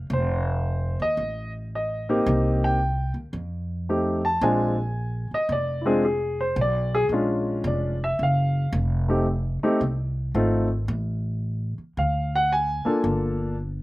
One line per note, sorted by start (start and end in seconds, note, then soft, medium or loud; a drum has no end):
0.10 0.96 F1 medium
0.10 0.97 C5 medium
1.00 1.16 D#2 medium
1.00 1.51 D#5 medium
1.17 2.21 A1 medium
1.75 2.59 D#5 medium
2.09 2.76 A#3 medium
2.09 2.76 C4 medium
2.09 2.77 D#4 medium
2.09 2.77 G4 medium
2.26 3.11 C2 medium
2.64 3.13 G5 medium
3.14 3.31 D#2 medium
3.33 4.37 F2 medium
3.89 4.20 A3 soft
3.89 4.20 C4 soft
3.89 4.20 D#4 soft
3.89 4.21 G4 medium
4.25 4.41 A5 medium
4.41 5.27 A#1 medium
4.41 4.74 G#3 medium
4.41 4.74 C4 medium
4.41 4.74 D4 medium
4.41 4.74 F4 medium
4.41 5.27 G#5 medium
5.31 5.50 D#5 medium
5.31 muted upright bass stroke soft
5.49 6.52 F1 medium
5.49 5.85 D5 medium
5.81 6.01 G#3 medium
5.81 5.84 E4 soft
5.86 6.01 C4 medium
5.86 6.01 D4 medium
5.86 6.03 F4 medium
5.86 6.02 G#4 medium
6.05 6.38 G#4 medium
6.41 6.57 C5 medium
6.56 7.06 B1 medium
6.61 6.94 D5 medium
6.95 7.05 G#4 medium
7.09 7.60 A#1 medium
7.09 7.94 G#3 medium
7.09 7.94 C#4 medium
7.09 7.94 D4 soft
7.13 7.94 F4 medium
7.64 8.14 F1 medium
7.64 8.01 D5 medium
8.04 8.20 E5 medium
8.19 8.69 F#1 medium
8.19 8.71 F5 medium
8.73 9.58 F1 medium
9.08 9.24 A3 medium
9.08 9.25 C4 soft
9.08 9.25 D#4 soft
9.08 9.25 G4 medium
9.63 9.79 A3 medium
9.63 9.79 C4 medium
9.63 9.79 D#4 medium
9.63 9.79 G4 medium
9.63 muted upright bass stroke soft
9.81 10.31 C2 medium
10.35 10.84 G#1 medium
10.35 10.67 A3 medium
10.35 10.67 C4 medium
10.35 10.67 D#4 medium
10.35 10.67 F4 medium
10.88 11.74 A1 medium
11.78 muted upright bass stroke soft
11.97 12.82 D2 medium
11.97 12.32 F5 medium
12.36 12.51 F#5 medium
12.52 13.01 G#5 medium
12.85 13.54 A#3 medium
12.85 13.54 D4 medium
12.85 13.55 F4 soft
12.85 13.54 A4 medium
12.85 muted upright bass stroke soft
13.04 13.83 G1 medium